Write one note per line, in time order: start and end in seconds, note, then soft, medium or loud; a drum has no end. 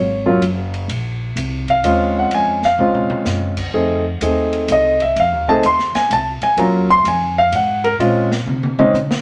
0.00 0.40 G#1 medium
0.00 0.39 C#5 medium
0.26 0.40 F#3 medium
0.26 0.40 A#3 medium
0.26 0.40 C#4 medium
0.26 0.40 F4 medium
0.41 0.87 F#1 medium
0.41 hi-hat pedal soft
0.41 ride medium
0.74 ride soft
0.88 1.35 A#1 medium
0.88 ride medium
1.36 1.82 C2 medium
1.36 hi-hat pedal medium
1.36 ride medium
1.68 2.13 F5 medium
1.68 kick medium
1.68 ride soft
1.84 2.30 D#2 medium
1.84 2.57 G#3 medium
1.84 2.57 C4 medium
1.84 2.57 C#4 medium
1.84 2.57 F4 medium
1.84 hi-hat pedal soft
1.84 ride medium
2.19 2.33 F#5 medium
2.31 2.77 F2 medium
2.31 2.64 G#5 medium
2.31 ride medium
2.63 3.23 F5 medium
2.63 snare soft
2.78 3.08 C#2 medium
2.78 3.52 G#3 medium
2.78 3.52 C4 medium
2.78 3.52 C#4 medium
2.78 3.52 F4 medium
2.78 mid tom soft
2.95 mid tom medium
3.09 muted upright bass stroke soft
3.09 mid tom medium
3.25 3.72 F#2 medium
3.25 snare soft
3.25 hi-hat pedal medium
3.57 kick medium
3.57 crash medium
3.73 4.20 F2 medium
3.73 4.02 A3 medium
3.73 4.02 C4 soft
3.73 4.02 D#4 soft
3.73 4.02 G#4 medium
4.21 4.67 D#2 medium
4.21 4.94 A3 medium
4.21 4.94 C4 soft
4.21 4.95 D#4 medium
4.21 4.94 G#4 medium
4.21 hi-hat pedal medium
4.21 ride medium
4.53 ride soft
4.68 5.14 C2 medium
4.68 5.01 D#5 medium
4.68 hi-hat pedal medium
4.68 ride medium
5.00 5.17 E5 medium
5.00 kick soft
5.00 ride soft
5.16 5.32 F2 medium
5.16 5.48 F5 medium
5.16 ride medium
5.32 5.47 D#2 soft
5.48 5.62 C2 medium
5.48 5.62 A3 medium
5.48 5.62 C4 medium
5.48 5.62 D#4 medium
5.48 5.63 G#4 medium
5.48 5.64 A5 loud
5.48 kick soft
5.63 5.93 D#2 medium
5.63 5.95 C6 loud
5.63 hi-hat pedal medium
5.63 ride medium
5.79 snare soft
5.95 6.11 G#5 medium
5.95 muted upright bass stroke soft
5.95 snare soft
5.95 ride soft
6.10 6.40 C2 medium
6.10 6.42 A5 medium
6.10 hi-hat pedal medium
6.10 ride medium
6.41 6.58 G#5 medium
6.41 muted upright bass stroke soft
6.41 ride soft
6.57 7.03 D#2 medium
6.57 6.86 F#3 medium
6.57 6.86 A#3 medium
6.57 6.86 C#4 soft
6.57 6.86 F4 medium
6.57 6.89 A#5 medium
6.57 ride medium
6.89 7.05 C6 loud
6.89 kick medium
7.04 7.51 F2 medium
7.04 7.37 G#5 medium
7.04 hi-hat pedal medium
7.04 ride medium
7.38 7.53 F5 loud
7.52 7.98 G#2 medium
7.52 7.84 F#5 medium
7.52 hi-hat pedal soft
7.52 ride medium
7.84 7.94 A#4 medium
7.84 ride soft
7.98 8.45 A#2 medium
7.98 8.28 G#3 medium
7.98 8.28 C4 soft
7.98 8.28 C#4 medium
7.98 8.28 F4 medium
7.98 ride medium
8.32 snare medium
8.46 8.92 C3 medium
8.46 high tom soft
8.63 high tom medium
8.79 8.93 G#3 medium
8.79 8.93 C4 medium
8.79 8.93 C#4 medium
8.79 8.93 D#4 medium
8.79 high tom medium
8.93 9.21 C#3 medium
8.93 hi-hat pedal medium
8.93 mid tom medium
9.11 snare medium